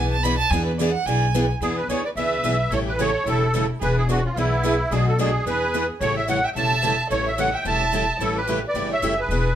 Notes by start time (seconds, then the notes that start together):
Already playing: B1 E3 B3 D4 G#4 B4 G#5
0.11 A5
0.23 E3 B3 D4 G#4 B4 B5
0.38 A5
0.50 E2 E3 B3 D4 G#4 B4 G#5
0.65 B4
0.78 E3 B3 D4 G#4 B4 D5
0.93 F#5
1.06 B1 E3 B3 D4 G#4 B4 G#5
1.35 E3 B3 D4 G#4 B4
1.61 E2 E3 B3 D4 E4 G#4 B4
1.77 G#4 B4
1.88 D2 E3 B3 D4 G#4 B4 C#5
2.04 B4 D5
2.15 C#2 E3 B3 D4 G#4 B4 E5
2.43 B1 E3 B3 D4 G#4 B4
2.70 A1 C#3 E3 G3 A3 C#4 E4 G4 A4 C#5
2.86 G4 B4
2.97 C#3 E3 G3 A3 C#4 E4 G4 A4 C#5
3.26 E1 C#3 E3 G3 A3 C#4 E4 G4 A4
3.54 C#3 E3 G3 A3 C#4 E4 G4 A4
3.80 E1 E3 B3 D4 G#4 B4
3.97 E4 G#4
4.08 E3 B3 D4 F#4 G#4 B4
4.25 C#4 F4
4.36 B1 E3 B3 D4 E4 G#4 B4
4.64 E3 B3 D4 G#4 B4
4.91 B1 B2 F#3 A3 D4 F#4 G#4 B4
5.08 F#4 A4
5.19 B2 F#3 A3 D4 F#4 G#4 B4
5.46 E2 E3 B3 D4 G#4 B4
5.74 E3 B3 D4 G#4 B4
6.00 A1 C#3 E3 G3 A3 C#4 E4 G4 A4 C#5
6.16 C#5 E5
6.28 C#3 E3 G3 A3 C#4 E4 G4 A4 C#5 F#5
6.44 E5 G5
6.55 E1 C#3 E3 G3 A3 C#4 E4 G4 A4 E5 A5
6.82 C#3 E3 G3 A3 C#4 E4 G4 A4
7.10 A1 C#3 E3 G3 A3 C#4 E4 G4 A4 C#5
7.25 C#5 E5
7.36 C#3 E3 G3 A3 C#4 E4 G4 A4 C#5 F#5
7.52 E5 G5
7.65 E1 C#3 E3 G3 A3 C#4 E4 G4 A4 E5 A5
7.92 C#3 E3 G3 A3 C#4 E4 G4 A4
8.19 A1 C#3 E3 G3 A3 C#4 E4 G4 A4
8.35 G4 B4
8.47 C#3 E3 G3 A3 C#4 E4 G4 A4
8.67 B4 D5
8.74 G1 C#3 E3 G3 A3 C#4 E4 G4 A4
8.91 C#5 E5
9.02 F#1 C#3 E3 G3 A3 C#4 E4 G4 A4
9.18 G#4 B4
9.29 E1 E3 B3 D4 G#4 B4